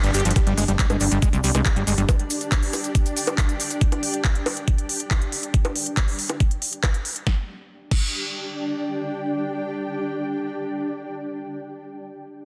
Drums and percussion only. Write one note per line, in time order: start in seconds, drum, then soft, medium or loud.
0.04 closed hi-hat medium
0.04 maracas soft
0.14 closed hi-hat medium
0.14 open hi-hat loud
0.14 maracas medium
0.20 closed hi-hat medium
0.25 closed hi-hat medium
0.25 maracas soft
0.31 closed hi-hat medium
0.36 kick loud
0.36 closed hi-hat loud
0.36 high bongo soft
0.36 maracas medium
0.47 closed hi-hat medium
0.58 open hi-hat loud
0.58 maracas medium
0.68 closed hi-hat medium
0.68 maracas soft
0.79 kick loud
0.79 clap loud
0.79 closed hi-hat loud
0.79 maracas medium
0.90 closed hi-hat medium
0.90 high bongo medium
0.90 maracas soft
1.00 open hi-hat loud
1.00 maracas medium
1.11 closed hi-hat medium
1.11 maracas soft
1.22 kick loud
1.22 closed hi-hat loud
1.22 maracas medium
1.33 closed hi-hat medium
1.33 maracas soft
1.44 open hi-hat loud
1.44 maracas medium
1.55 closed hi-hat medium
1.55 high bongo soft
1.55 maracas soft
1.65 kick loud
1.65 clap loud
1.65 closed hi-hat loud
1.65 maracas soft
1.76 closed hi-hat medium
1.87 open hi-hat loud
1.87 maracas medium
1.98 closed hi-hat medium
1.98 maracas soft
2.09 kick loud
2.09 closed hi-hat loud
2.09 high bongo medium
2.09 maracas medium
2.19 closed hi-hat medium
2.30 open hi-hat loud
2.30 maracas medium
2.41 closed hi-hat medium
2.41 maracas soft
2.52 kick loud
2.52 clap loud
2.52 closed hi-hat medium
2.52 maracas medium
2.62 open hi-hat medium
2.62 maracas soft
2.73 open hi-hat loud
2.73 high bongo soft
2.73 maracas loud
2.84 closed hi-hat medium
2.84 maracas soft
2.95 kick loud
2.95 closed hi-hat medium
2.95 maracas medium
3.06 closed hi-hat medium
3.06 maracas soft
3.17 open hi-hat loud
3.17 maracas medium
3.27 closed hi-hat medium
3.27 high bongo medium
3.27 maracas soft
3.38 kick loud
3.38 clap loud
3.38 closed hi-hat medium
3.38 maracas soft
3.49 closed hi-hat medium
3.49 maracas soft
3.60 open hi-hat loud
3.60 maracas medium
3.71 closed hi-hat medium
3.71 maracas soft
3.81 kick loud
3.81 closed hi-hat medium
3.92 closed hi-hat medium
3.92 high bongo soft
4.03 open hi-hat loud
4.14 closed hi-hat medium
4.24 kick loud
4.24 clap loud
4.24 closed hi-hat medium
4.35 closed hi-hat soft
4.46 open hi-hat loud
4.46 high bongo medium
4.57 closed hi-hat soft
4.68 kick loud
4.68 closed hi-hat medium
4.78 closed hi-hat soft
4.89 open hi-hat loud
5.00 closed hi-hat medium
5.11 kick loud
5.11 clap loud
5.11 closed hi-hat medium
5.11 high bongo soft
5.22 closed hi-hat medium
5.32 open hi-hat loud
5.43 closed hi-hat medium
5.54 kick loud
5.54 closed hi-hat medium
5.65 closed hi-hat soft
5.65 high bongo medium
5.76 open hi-hat loud
5.86 closed hi-hat soft
5.97 kick loud
5.97 clap loud
5.97 closed hi-hat medium
6.08 open hi-hat medium
6.19 open hi-hat loud
6.30 closed hi-hat soft
6.30 high bongo soft
6.40 kick loud
6.40 closed hi-hat medium
6.51 closed hi-hat soft
6.62 open hi-hat loud
6.73 closed hi-hat soft
6.83 kick loud
6.83 clap loud
6.83 closed hi-hat medium
6.83 high bongo medium
6.94 closed hi-hat soft
7.05 open hi-hat loud
7.16 closed hi-hat soft
7.27 kick loud
7.27 snare medium
7.91 kick loud
7.91 crash medium